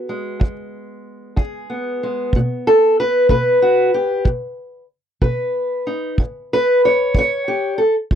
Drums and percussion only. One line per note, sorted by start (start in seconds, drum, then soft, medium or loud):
0.41 kick medium
1.37 kick medium
2.33 kick medium
3.29 kick medium
4.25 kick medium
5.22 kick medium
6.18 kick medium
7.15 kick medium
8.11 kick medium